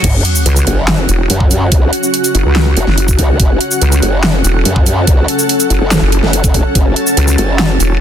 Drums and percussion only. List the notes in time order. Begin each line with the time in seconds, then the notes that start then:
0.04 kick, closed hi-hat, crash
0.25 closed hi-hat
0.35 shaker
0.46 closed hi-hat
0.56 closed hi-hat, shaker
0.67 closed hi-hat
0.88 snare, clap
1.09 closed hi-hat, shaker
1.30 closed hi-hat
1.40 kick
1.51 closed hi-hat, shaker
1.72 kick, closed hi-hat
1.93 closed hi-hat
2.03 shaker
2.14 closed hi-hat
2.24 closed hi-hat, shaker
2.35 closed hi-hat
2.56 snare, clap
2.77 closed hi-hat
2.87 snare
2.98 closed hi-hat
3.08 kick, shaker
3.19 kick, closed hi-hat
3.40 kick, closed hi-hat
3.61 closed hi-hat
3.71 shaker
3.82 closed hi-hat
3.92 closed hi-hat, shaker
4.02 closed hi-hat
4.23 snare, clap
4.44 closed hi-hat, shaker
4.65 closed hi-hat
4.76 kick
4.86 closed hi-hat, shaker
5.07 kick, closed hi-hat
5.28 closed hi-hat
5.39 shaker
5.49 closed hi-hat
5.60 closed hi-hat, shaker
5.70 closed hi-hat
5.91 snare, clap, shaker
6.12 closed hi-hat
6.23 snare
6.33 closed hi-hat
6.44 kick, closed hi-hat, shaker
6.54 kick, closed hi-hat
6.75 kick, closed hi-hat
6.96 closed hi-hat
7.07 shaker
7.17 closed hi-hat
7.28 closed hi-hat, shaker
7.38 closed hi-hat
7.59 snare, clap
7.80 closed hi-hat, shaker